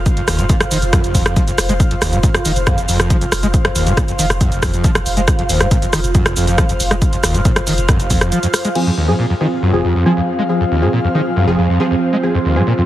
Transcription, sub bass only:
0.17 F1
0.28 F1
0.39 F1
0.60 F1
0.71 F1
0.82 F1
1.04 F1
1.15 F1
1.26 F1
1.47 F1
1.58 F1
1.69 F1
1.91 F1
2.01 F1
2.13 F1
2.34 F1
2.45 F1
2.56 F1
2.78 F1
2.88 F1
2.99 F1
3.21 F1
3.32 F1
3.43 F1
3.65 F1
3.75 F1
3.86 F1
4.08 F1
4.19 F1
4.30 F1
4.52 F1
4.62 F1
4.73 F1
4.95 F1
5.06 F1
5.17 F1
5.39 F1
5.49 F1
5.60 F1
5.82 F1
5.93 F1
6.04 F1
6.26 F1
6.36 F1
6.47 F1
6.69 F1
6.80 F1
6.91 F1
7.13 F1
7.23 F1
7.34 F1
7.56 F1
7.67 F1
7.78 F1
8.00 F1
8.10 F1
8.21 F1

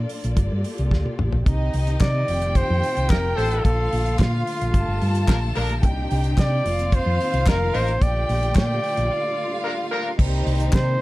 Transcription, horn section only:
3.10 F3 A#3 D#4 A#4
3.37 A3 C4 F4 C5
5.28 F3 A#3 D4 A#4
5.56 F3 A#3 D4 A#4
7.47 F3 A#3 D#4 A#4
7.74 F3 A#3 D#4 A#4
9.64 F3 A#3 D4 A#4
9.92 F3 A#3 D4 A#4

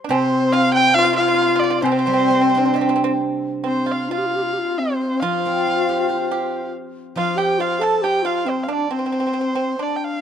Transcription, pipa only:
0.04 D4
0.10 C4
0.53 F4
0.99 F4
1.05 F4
1.13 F4
1.21 F4
1.28 F4
1.34 F4
1.42 F4
1.48 F4
1.56 F4
1.64 F4
1.70 F4
1.85 C4
1.92 C4
1.99 C4
2.06 C4
2.13 C4
2.19 C4
2.28 C4
2.35 C4
2.41 C4
2.50 C4
2.57 C4
2.66 C4
2.74 C4
2.81 C4
2.89 C4
2.96 C4
3.04 C4
3.64 C4
3.86 F4
4.11 F4
5.22 F4
6.31 G4
7.17 F4
7.38 G4
7.60 F4
7.81 A4
8.04 G4
8.25 F4
8.46 C4
8.68 D4
8.91 C4
8.99 C4
9.06 C4
9.12 C4
9.20 C4
9.27 C4
9.33 C4
9.41 C4
9.55 C4
9.79 D4

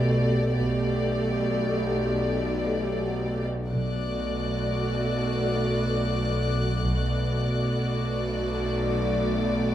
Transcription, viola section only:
Already playing: A3 G4
0.58 A3 G4
3.69 A3 F#4
6.81 A3 F#4

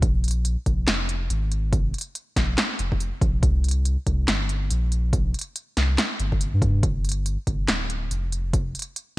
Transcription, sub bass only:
0.02 A#1
0.66 A#1
0.88 F1
1.30 G#1
2.36 A#1
2.79 F1
3.21 A#1
3.43 C2
4.07 C2
4.28 G1
4.71 A#1
5.77 C2
6.19 G1
6.54 G2
6.83 G1
7.47 G1
7.68 D1
8.11 F1

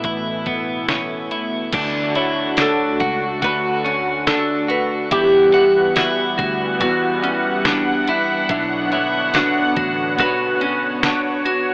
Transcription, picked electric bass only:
0.05 A1
1.74 D2
3.01 C#2
3.42 D2
5.12 E2
6.39 D2
6.81 E2
8.50 B1
9.77 A1
10.19 B1

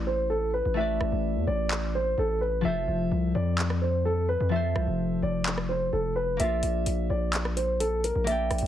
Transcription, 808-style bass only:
Already playing: A1
0.65 A1
1.01 A1
1.12 A1
1.36 E2
1.47 A1
2.18 A1
2.65 F1
2.88 F1
3.12 C2
3.35 F2
4.40 F2
4.76 C2
4.87 F1
5.23 F1
5.93 F1
6.40 A#1
6.63 A#1
6.87 A#1
7.10 A#1
8.15 A#1
8.51 A#1
8.62 A#1

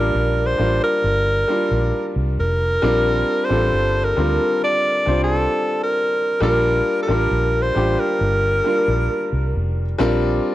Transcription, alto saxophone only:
Already playing: A#4
0.47 C5
0.84 A#4
2.40 A#4
3.45 C5
4.04 A#4
4.64 D5
5.24 A4
5.83 A#4
6.43 A#4
7.03 A#4
7.62 C5
8.00 A#4

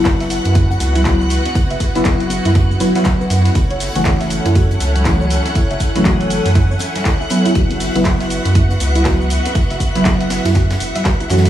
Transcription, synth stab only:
Already playing: F#3 B3 E4
1.05 F#3 B3 E4
1.95 F#3 B3 E4
2.80 F#3 B3 E4
2.95 F#3 B3 E4
3.95 E3 F#3 A3 C#4 F#4
5.05 E3 F#3 A3 C#4 F#4
5.95 E3 F#3 A3 C#4 F#4
7.30 F#3 B3 E4
7.95 F#3 B3 E4
9.05 F#3 B3 E4
9.95 F#3 B3 E4
11.30 E3 F#3 A3 C#4 F#4

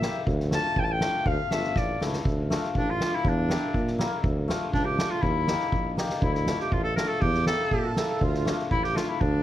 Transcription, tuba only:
0.27 D2
0.76 A1
1.26 D2
1.51 G1
1.76 A1
2.01 C#2
2.25 D2
2.75 A1
3.25 E2
3.74 A#2
4.24 D2
4.73 C#2
5.23 D#2
5.72 A#1
6.22 D2
6.72 A1
7.22 E2
7.71 A#2
8.21 D2
8.71 A1
9.21 D2

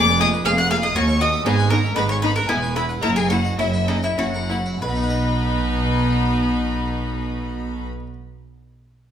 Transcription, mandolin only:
Already playing: D5
0.21 D#5
0.46 F5
0.58 F#5
0.71 F5
0.83 D#5
0.96 C#5
1.21 D#5
1.46 G#4
1.70 A#4
1.96 B4
2.09 C#5
2.22 B4
2.36 A#4
2.49 G#4
2.76 B4
3.03 A#4
3.16 G#4
3.30 F#4
3.59 E4
3.88 D#4
4.04 E4
4.19 F#4
4.82 B4

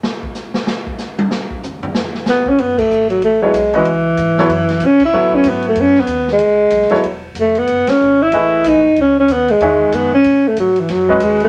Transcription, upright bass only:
2.57 F#1
2.89 G#1
3.21 A1
3.53 B1
3.86 C#2
4.18 G#2
4.49 F#2
4.81 B2
5.13 A2
5.45 G#2
5.76 F#2
6.07 D#2
6.39 C#2
6.71 B1
6.91 muted upright bass stroke
7.03 E1
7.35 F1
7.68 F#1
7.88 muted upright bass stroke
8.01 G#1
8.32 A1
8.65 B1
8.75 A1
8.86 F#1
8.96 C#2
9.28 D#2
9.60 E2
9.93 F#2
10.25 A2
10.57 G#2
10.90 F#2
11.21 D#2

